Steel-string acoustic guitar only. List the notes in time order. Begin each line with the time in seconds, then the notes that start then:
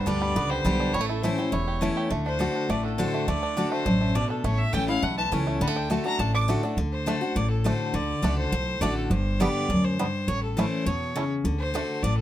Already playing: G2
0.06 D3 G3 B3 G4
0.36 D3
0.64 D3 G3 B3 G4
0.94 A2
1.23 E3 A3 C#4 E4
1.38 C#4 E4
1.52 E2
1.81 E3 A3 C#4 E4
2.10 D3
2.39 D3 A3 D4 F#4
2.70 A2
2.98 D3 A3 D4 F#4
3.28 D3
3.57 D3 A3 D4 F#4
3.86 F#2
4.15 B2
4.44 A2
4.73 E3 A3 C#4 E4
4.88 C#4 E4
5.03 E2
5.32 E3 A3 C#4 E4
5.61 D3
5.90 D3 A3 D4 F#4
6.04 D4 F#4
6.19 A2
6.48 D3 A3 D4 F#4
6.63 D4 F#4
6.78 D3
7.06 D3 A3 D4 F#4
7.21 D4 F#4
7.36 A2
7.64 D3 A3 D4 F#4
7.94 D3
8.22 D3 A3 D4 F#4
8.52 A2
8.81 D3 A3 D4 F#4
9.11 G2
9.40 D3 G3 B3 G4
9.70 F#2
9.99 G2
10.28 A2
10.57 E3 A3 C#4 E4
10.86 B2
11.16 C#3
11.45 D3
11.74 D3 A3 D4 F#4
12.04 A2